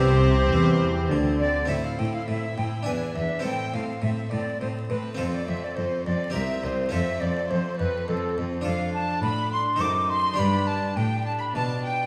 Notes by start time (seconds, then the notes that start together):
Already playing: C2 C3 C4 E4 G4 C5
0.51 E2 E3
1.09 D2 D3
1.39 D5
1.65 C4 E4 A4 E5
1.70 A2 C5 E5
1.84 F5
1.98 A2 E4 C5 G5
2.14 F5
2.28 A2 E4 C5 E5
2.56 A2 E4 C5 G5
2.83 E2 D4 E4 B4 G#5
2.87 E2
3.15 E2 D4 B4 E5
3.39 C4 E4 A4
3.44 A2 C4 A4 G5
3.74 A2 C4 A4 F5
4.01 A2 C4 A4 E5
4.30 A2 C4 A4 D5
4.59 A2 C4 A4 C5
4.87 A2 C4 A4 B4
5.15 C4 F4 A4 C5
5.19 F2 C5
5.32 D5
5.46 F2 C4 A4 E5
5.62 D5
5.75 F2 C4 A4 C5
6.04 F2 C4 A4 D5
6.30 C4 G4 A#4 E5
6.35 C2 A#4 E5
6.63 C2 C4 A#4 C5
6.89 C4 F4 A4 E5
6.93 F2
7.20 F2 C4 A4 D5
7.49 F2 C4 A4 C5
7.77 F2 C4 A4 B4
8.07 F2 C4 A4
8.37 F2 C4 A4
8.61 D4 F4 A4
8.66 F2 D4 A4 F5
8.94 A5
9.23 A2 B5
9.53 C6
9.76 D#4 A4 C5
9.80 F#2 D#4 A4 D6
10.10 C6
10.34 D4 G4 D5
10.38 G2 D4 G4 B5
10.67 A5
10.97 A2 D4 G4 G5
11.25 A5
11.39 B5
11.55 B2 F4 A5
11.84 G5